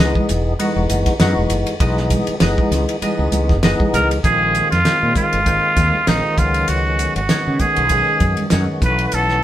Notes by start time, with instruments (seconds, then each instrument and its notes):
0.00 fretless electric bass C#2, tonewheel organ E3 G#3 B3 D#4 G#4
0.15 kick, high conga
0.29 fretless electric bass E1, hi-hat pedal, ride, low conga
0.59 tonewheel organ E3 G#3 B3 D#4 F#4, ride, high conga
0.76 fretless electric bass E1
0.90 fretless electric bass F#1, hi-hat pedal, ride
1.06 kick, snare, ride
1.20 fretless electric bass F#2, tonewheel organ E3 G#3 B3 D#4 F#4, snare, ride
1.37 fretless electric bass E1, high conga
1.50 fretless electric bass F#1, hi-hat pedal, ride, low conga
1.67 ride
1.80 fretless electric bass B1, tonewheel organ E3 G#3 B3 D#4 G#4, kick, ride
1.97 snare
2.10 kick, hi-hat pedal, ride, high conga, low conga
2.27 muted fretless electric bass stroke, ride
2.40 fretless electric bass F#1, tonewheel organ E3 G#3 B3 D#4 G#4, snare, ride
2.58 kick, high conga
2.71 fretless electric bass C#2, snare, hi-hat pedal, ride, low conga
2.89 ride
3.02 tonewheel organ E3 G#3 B3 D#4 G#4, muted fretless electric bass stroke, ride, high conga
3.19 fretless electric bass C#2
3.32 fretless electric bass C#2, hi-hat pedal, ride, high conga
3.49 fretless electric bass F#1, kick, snare
3.63 tonewheel organ E3 G#3 B3 D#4 G#4, snare, ride
3.80 kick, high conga
3.93 fretless electric bass C#2, muted trumpet A#4, hi-hat pedal, ride, low conga
4.11 ride
4.24 fretless electric bass A#1, tonewheel organ D#3 G#3 A#3 C4 F4, muted trumpet G#4, kick, hi-hat pedal, ride
4.55 hi-hat pedal, ride, low conga
4.71 fretless electric bass F2, muted trumpet F4, snare, ride
4.84 tonewheel organ D#3 G#3 A#3 C4 F4, snare, hi-hat pedal, ride
5.03 fretless electric bass A#2
5.15 muted trumpet F4, kick, hi-hat pedal, ride, high conga, low conga
5.33 fretless electric bass G#1, ride
5.46 tonewheel organ D#3 G#3 A#3 C4 F4, kick, hi-hat pedal, ride
5.77 fretless electric bass D#2, kick, snare, hi-hat pedal, ride
5.93 high conga
6.07 fretless electric bass A#1, tonewheel organ D#3 G#3 A#3 C4 F4, muted trumpet D#4, snare, hi-hat pedal, ride
6.37 fretless electric bass C#2, tonewheel organ D#3 F#3 G#3 B3 C#4, muted trumpet F4, kick, hi-hat pedal, ride, low conga
6.54 ride
6.68 fretless electric bass C#2, muted trumpet F#4, hi-hat pedal, ride
6.99 hi-hat pedal, ride, low conga
7.16 fretless electric bass G#1, muted trumpet F#4, ride
7.29 tonewheel organ D#3 G#3 B3 C#4 F#4, snare, hi-hat pedal, ride
7.47 fretless electric bass C#3
7.59 muted trumpet G#4, kick, hi-hat pedal, ride, high conga, low conga
7.76 fretless electric bass B1, ride
7.89 tonewheel organ D#3 G#3 B3 C#4 G#4, kick, hi-hat pedal, ride
8.20 fretless electric bass F#2, kick, hi-hat pedal, ride
8.37 ride, high conga
8.50 fretless electric bass F#2, tonewheel organ D#3 G#3 B3 C#4 F#4, snare, hi-hat pedal, ride
8.82 fretless electric bass B1, tonewheel organ E3 A3 B3 C#4 F#4, muted trumpet B4, kick, hi-hat pedal, ride, low conga
8.99 ride
9.07 muted trumpet B4
9.12 fretless electric bass B1, muted trumpet A4, hi-hat pedal, ride
9.29 snare